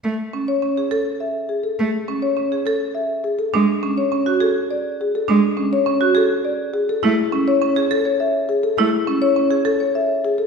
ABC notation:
X:1
M:3/4
L:1/16
Q:1/4=103
K:A
V:1 name="Marimba"
z3 c z2 A z e z G A | z3 c z2 A z e z G A | z3 c z2 A z d z G A | z3 c z2 A z d z G A |
z3 c z2 A c e z G A | z3 c z2 A c e z G A |]
V:2 name="Marimba"
z2 C z C G A z4 z | z2 C z C G A z4 z | D z C z C F G z4 z | D z C z C F G z4 z |
E z C z C G A z4 z | E z C z C G A z4 z |]
V:3 name="Cello"
A, z8 z3 | A, z8 z3 | G, z8 z3 | G, z8 z3 |
A, z8 z3 | A, z8 z3 |]